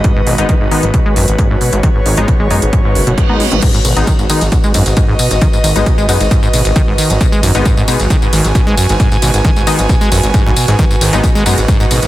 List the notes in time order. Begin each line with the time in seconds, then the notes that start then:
Already playing: G#2 G#3 F#4 B4 D#5
0.04 G#2, kick, closed hi-hat
0.16 G#2
0.27 G#1 B2, open hi-hat
0.38 G#1 G#3 B3 D#4, closed hi-hat
0.49 D#3, kick, closed hi-hat
0.61 G#1 G#2
0.71 D#3 G#3 B3 D#4, open hi-hat
0.80 G#1 G#3 C#5, closed hi-hat
0.94 B2, kick, closed hi-hat
1.06 G#3
1.16 G#1 F#2, open hi-hat
1.28 G#1, closed hi-hat
1.39 G#2, kick, closed hi-hat
1.50 G#1 G#2
1.61 B2, open hi-hat
1.73 G#1, closed hi-hat
1.83 D#3, kick, closed hi-hat
1.95 G#2
2.06 G#1 D#3, open hi-hat
2.17 G#1 G#3 B3 D#4, closed hi-hat
2.28 B2, kick, closed hi-hat
2.40 G#1 G#3
2.50 F#2 G#3 B3 D#4, open hi-hat
2.62 G#1, closed hi-hat
2.73 G#2, kick, closed hi-hat, reverse cymbal
2.85 G#2
2.95 F#1 G#1, open hi-hat
3.07 F#1 B2, closed hi-hat
3.18 G#2, kick, closed hi-hat
3.29 G#1 G#3 B3 D#4
3.40 G#3, open hi-hat, high tom
3.52 G#1 D#3, closed hi-hat, mid tom
3.62 G#2 F#4, kick, closed hi-hat, crash, tambourine
3.74 G#2, tambourine
3.85 G#1 B2, open hi-hat, ride, tambourine
3.93 G#1 G#3 B3 D#4 B4, closed hi-hat, tambourine
3.97 D#5
4.07 D#3, kick, closed hi-hat, tambourine
4.19 G#1 G#2, tambourine
4.30 D#3 G#3 B3 D#4, open hi-hat, ride, tambourine
4.41 G#1 G#3, closed hi-hat, tambourine
4.52 B2, kick, closed hi-hat, tambourine
4.64 G#3, tambourine
4.74 G#1 F#2, open hi-hat, ride, tambourine
4.86 G#1, closed hi-hat, tambourine
4.97 G#2, kick, closed hi-hat, tambourine
5.08 G#1 G#2
5.19 B2, open hi-hat, ride, tambourine
5.31 G#1, closed hi-hat, tambourine
5.42 D#3, kick, closed hi-hat, tambourine
5.53 G#2, tambourine
5.64 G#1 D#3, open hi-hat, ride, tambourine
5.75 G#1 G#3 B3 D#4, closed hi-hat, tambourine
5.86 B2, kick, closed hi-hat, tambourine
5.98 G#1 G#3, tambourine
6.09 F#2 G#3 B3 D#4, open hi-hat, ride, tambourine
6.20 G#1, closed hi-hat, tambourine
6.31 G#2, kick, closed hi-hat, tambourine
6.43 G#2, tambourine
6.53 G#1 B2, open hi-hat, ride, tambourine
6.65 G#1, closed hi-hat, tambourine
6.76 D#3, kick, closed hi-hat, tambourine
6.87 G#1 G#2
6.98 D#3, open hi-hat, ride, tambourine
7.10 G#1 G#3, closed hi-hat, tambourine
7.21 B2, kick, closed hi-hat, tambourine
7.32 G#3, tambourine
7.43 G#1 F#2, open hi-hat, ride, tambourine
7.55 G#1 G#3 B3 D#4 G#5, closed hi-hat, tambourine
7.65 G#2, kick, closed hi-hat, tambourine
7.77 G#1 G#2, tambourine
7.88 B2 G#3 B3 D#4, open hi-hat, ride, tambourine
8.00 G#1, closed hi-hat, tambourine
8.10 D#3, kick, closed hi-hat, tambourine
8.22 G#2, tambourine
8.33 G#1 D#3, open hi-hat, ride, tambourine
8.44 G#1 G#3, closed hi-hat, tambourine
8.55 B2, kick, closed hi-hat, tambourine
8.67 G#1 G#3
8.77 F#2, open hi-hat, ride, tambourine
8.89 G#1, closed hi-hat, tambourine
9.00 G#2, kick, closed hi-hat, tambourine
9.11 G#2, tambourine
9.22 G#1 B2, open hi-hat, ride, tambourine
9.34 G#1, closed hi-hat, tambourine
9.45 D#3, kick, closed hi-hat, tambourine
9.56 G#1 G#2, tambourine
9.67 D#3 G#3 B3 D#4, open hi-hat, ride, tambourine
9.79 G#1 G#3, closed hi-hat, tambourine
9.89 B2, kick, closed hi-hat, tambourine
10.01 G#3, tambourine
10.12 G#1 F#2, open hi-hat, ride, tambourine
10.23 G#1, closed hi-hat, tambourine
10.34 G#2, kick, closed hi-hat, tambourine
10.46 B1 G#2
10.56 B2, open hi-hat, ride, tambourine
10.68 G#1 G#2, closed hi-hat, tambourine
10.79 D#3, kick, closed hi-hat, tambourine
10.90 G#2, tambourine
11.01 G#1 D#3, open hi-hat, ride, tambourine
11.13 G#1 G#3 B3 D#4 D#5, closed hi-hat, tambourine
11.23 B2, kick, closed hi-hat, tambourine
11.35 G#1 G#3, tambourine
11.46 F#2 G#3 B3 D#4, open hi-hat, ride, tambourine
11.58 G#1, closed hi-hat, tambourine
11.68 G#2, kick, closed hi-hat, tambourine
11.80 G#2, tambourine
11.91 G#1 B2, open hi-hat, ride, tambourine
12.02 G#1, closed hi-hat, tambourine